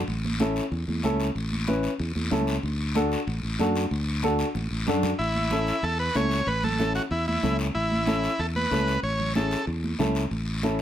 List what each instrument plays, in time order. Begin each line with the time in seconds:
0.03 low conga
0.08 fingered electric bass A1, high conga, long guiro
0.25 high conga
0.40 upright piano C#4 E4 A4, high conga, short guiro
0.56 short guiro
0.71 fingered electric bass E2, high conga, long guiro
0.88 fingered electric bass E2, high conga
1.03 fingered electric bass C#2, upright piano C#4 E4 A4, high conga, short guiro
1.20 short guiro
1.35 fingered electric bass A1, high conga, long guiro
1.52 high conga
1.67 upright piano C#4 E4 B4, high conga, short guiro
1.83 short guiro
1.99 fingered electric bass E2, high conga, long guiro
2.15 fingered electric bass E2, high conga
2.31 fingered electric bass C#2, upright piano C#4 E4 A4, high conga, low conga, short guiro
2.47 short guiro
2.63 fingered electric bass D2, high conga, long guiro
2.95 upright piano D4 F#4 A4, high conga, short guiro
3.12 short guiro
3.27 fingered electric bass A1, high conga, long guiro
3.43 fingered electric bass A1
3.59 fingered electric bass F#2, upright piano D4 F#4 A4, high conga, short guiro
3.76 short guiro
3.91 fingered electric bass D2, high conga, long guiro
4.23 upright piano D4 F#4 A4, high conga, short guiro
4.39 short guiro
4.55 fingered electric bass A1, high conga, long guiro
4.71 fingered electric bass A1
4.87 fingered electric bass F#2, upright piano D4 F#4 A4, low conga, short guiro
5.03 low conga, short guiro
5.19 fingered electric bass A1, transistor combo organ E4, high conga, long guiro
5.35 high conga
5.51 upright piano C#4 E4 A4, high conga, short guiro
5.67 short guiro
5.83 fingered electric bass E2, transistor combo organ A4, high conga, long guiro
6.00 transistor combo organ B4
6.15 fingered electric bass C#2, upright piano C#4 E4 A4, transistor combo organ C#5, high conga, short guiro
6.31 short guiro
6.47 fingered electric bass A1, transistor combo organ B4, high conga, long guiro
6.64 transistor combo organ A4, high conga, low conga
6.79 upright piano C#4 E4 A4, high conga, short guiro
6.95 transistor combo organ F#4, short guiro
7.11 fingered electric bass E2, transistor combo organ E4, high conga, long guiro
7.28 transistor combo organ E4, high conga
7.43 fingered electric bass C#2, upright piano C#4 E4 A4, high conga, low conga, short guiro
7.59 short guiro
7.75 fingered electric bass A1, transistor combo organ E4, high conga, long guiro
7.91 high conga
8.06 upright piano C#4 E4 A4, high conga, short guiro
8.24 short guiro
8.39 fingered electric bass E2, transistor combo organ A4, high conga, long guiro
8.56 transistor combo organ B4, high conga
8.71 fingered electric bass C#2, upright piano C#4 E4 A4, high conga, short guiro
8.88 short guiro
9.03 fingered electric bass A1, transistor combo organ C#5, high conga, long guiro
9.20 low conga
9.35 upright piano C#4 E4 G#4, transistor combo organ A4, high conga, short guiro
9.51 short guiro
9.67 fingered electric bass E2, high conga, long guiro
9.84 high conga
9.99 fingered electric bass C#2, upright piano C#4 E4 A4, high conga, low conga, short guiro
10.15 short guiro
10.31 fingered electric bass A1, high conga, long guiro
10.63 upright piano C#4 E4 A4, high conga, short guiro